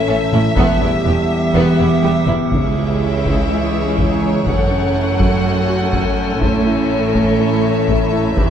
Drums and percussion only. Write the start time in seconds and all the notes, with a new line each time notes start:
0.32 taiko mid
0.56 taiko
2.27 taiko mid
2.52 taiko
3.25 taiko
3.98 taiko
4.46 taiko
5.20 taiko
5.93 taiko
6.42 taiko
7.15 taiko
7.88 taiko
8.37 taiko